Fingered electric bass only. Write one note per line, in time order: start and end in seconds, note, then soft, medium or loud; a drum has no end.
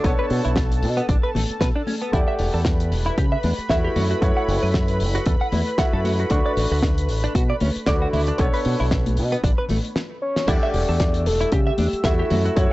0.04 0.13 B1 medium
0.31 0.39 B2 loud
0.45 0.84 B1 medium
0.83 1.00 B2 medium
1.09 1.18 A1 loud
1.35 1.44 A1 medium
1.50 muted fingered electric bass stroke soft
1.61 1.70 B2 medium
2.13 2.22 E2 medium
2.39 2.48 E1 loud
2.54 2.93 E2 medium
2.91 3.08 E1 medium
3.18 3.35 C#3 medium
3.44 3.53 E2 loud
3.58 muted fingered electric bass stroke soft
3.70 3.87 E2 medium
3.96 4.13 F#2 medium
4.22 4.31 F#2 loud
4.48 4.57 F#1 loud
4.63 5.02 F#2 medium
5.00 5.17 F#1 medium
5.26 5.35 E2 loud
5.41 muted fingered electric bass stroke soft
5.52 5.61 E2 medium
5.93 6.23 F#2 loud
6.31 6.39 D2 medium
6.57 6.66 A1 loud
6.71 7.09 D2 loud
7.09 7.26 A1 medium
7.35 7.52 B2 loud
7.61 7.70 D2 loud
7.76 muted fingered electric bass stroke soft
7.87 8.04 D2 loud
8.14 8.30 D2 medium
8.39 8.48 B1 medium
8.66 8.74 B2 loud
8.81 9.20 B1 loud
9.18 9.35 B2 medium
9.44 9.52 A1 loud
9.59 muted fingered electric bass stroke soft
9.70 9.79 A1 medium
10.48 10.57 E2 loud
10.74 10.83 E1 loud
10.89 11.28 E2 medium
11.26 11.43 E1 medium
11.52 11.69 C#3 loud
11.79 11.87 E2 loud
11.93 muted fingered electric bass stroke soft
12.05 12.22 E2 medium
12.31 12.48 F#2 medium
12.57 12.66 F#2 loud